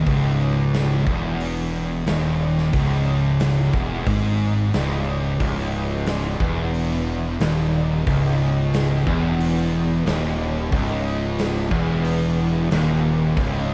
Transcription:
0.06 C#1 C#2, kick, open hi-hat
0.74 snare, open hi-hat
1.07 E1 E2, kick
1.40 open hi-hat
2.07 D#1 D#2, snare, open hi-hat
2.58 snare
2.73 C#1 C#2, kick, open hi-hat
3.40 snare, open hi-hat
3.73 E1 E2, kick
4.06 G#1 G#2, kick, open hi-hat
4.73 C#1 C#2, snare, open hi-hat
5.40 C#1 C#2, kick, open hi-hat
6.06 snare, open hi-hat
6.40 E1 E2, kick
6.74 open hi-hat
7.39 D#1 D#2, snare, open hi-hat
8.07 C#1 C#2, kick, open hi-hat
8.74 snare, open hi-hat
9.06 E1 E2, kick
9.40 open hi-hat
10.06 D#1 D#2, snare, open hi-hat
10.71 C#1 C#2, kick, open hi-hat
11.39 snare, open hi-hat
11.71 E1 E2, kick
12.05 open hi-hat
12.71 D#1 D#2, snare, open hi-hat
13.37 C#1 C#2, kick, open hi-hat

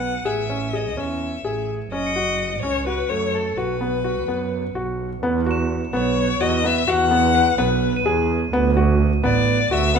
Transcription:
Already playing: B1 B3 F#5
0.25 A1 G#4 E5
0.50 C#4
0.73 G#4 D#5 E7
0.97 E2 C#4 E5
1.45 A1 G#4
1.92 F#1 C#4 D#5
2.06 C#7
2.16 F#4
2.62 C#2 C#4 C#5
2.87 F#4 B4
3.09 F#2 A3 C#5
3.34 A4
3.56 B1 F#4 B4
3.81 B3
4.04 F#4
4.27 F#2 B3
4.75 B1 F#4
5.22 E2 B3
5.46 F#4
5.51 E7
5.93 B1 B3 C#5
6.41 E2 F#4 D#5
6.64 B3 E5
6.88 E2 F#4 F#5
7.11 B3
7.35 B4
7.58 B1 B3 B4
7.96 D#7
8.06 E2 G#4
8.52 D2 B3
8.77 F#4
9.24 A1 B3 D5
9.70 D2 F#4 E5
9.95 B3 F#5

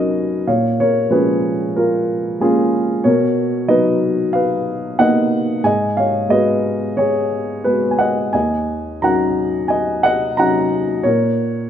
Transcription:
Already playing: D#2 F#3 C#4 D#4 G#4 A#4 B4 C#5 D#5
0.47 A#2 C#5 F5
0.80 A#4 C#5
1.10 F3 G#3 C#4 G#4 B4
1.76 F4 A#4
2.40 G#3 A#3 C#4 F4 G#4
3.04 B2 A#4 C#5
3.68 F#3 B3 D#4 B4 D#5
4.33 B4 F5
4.98 A#3 B3 D#4 D#5 F#5
5.63 G#2 D#5 G#5
5.97 C#5 F5
6.29 G#3 B3 F#4 B4 D#5
6.97 G#4 C#5
7.64 G#3 B3 F#4 G#4 B4
7.91 G#5
7.99 D#5 F#5
8.33 D#2 D#5 G#5
9.02 F#3 C#4 D#4 F#5 A#5
9.68 D#5 G#5
10.03 D#5 F#5
10.37 F#3 C#4 D#4 F#5 A#5
11.03 A#2 A#4 C#5

